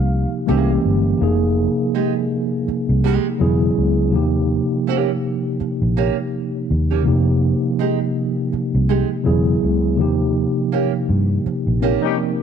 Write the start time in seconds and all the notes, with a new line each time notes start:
Already playing: C2 C3 F3 A#3 D#4 G4 F5
0.46 C2 D#3 G#3 A#3 C#4 E4 G4 G#4
0.53 E3
0.85 G1
1.18 F1 C3 F3 A#3 D#4
1.23 G#4
1.95 G#3 D#4 G4
2.68 muted nylon-string guitar stroke, muted fingered electric bass stroke
2.89 C2
3.04 G#3 D#4 G4
3.39 E1 C#3 F#3 B3 E4 G#4
3.78 C#2
4.10 D#2 C3 F3 A#3 D#4
4.16 G4
4.87 A#3 C#4 G4
5.60 muted nylon-string guitar stroke, muted fingered electric bass stroke
5.82 A#1
5.97 A#3 C#4 G4
6.71 D#2
6.91 A#3 C#4 G4
7.03 C3 F3 A#3
7.07 F1 D#4 G4
7.79 G#3 D#4 G4
8.52 muted nylon-string guitar stroke, muted fingered electric bass stroke
8.75 C2
8.89 G#3 D#4 G4
9.24 E1 C#3 F#3 B3 E4 G#4
9.63 C#2
9.96 D#2 C3 F3 A#3 D#4
10.01 G4
10.72 A#3 C#4 G4
11.09 G2
11.46 muted nylon-string guitar stroke, muted fingered electric bass stroke
11.67 A#1
11.80 F3 A#3 C4 C#4 D#4 G4 A#4
12.02 G3 C#4 D#4 G4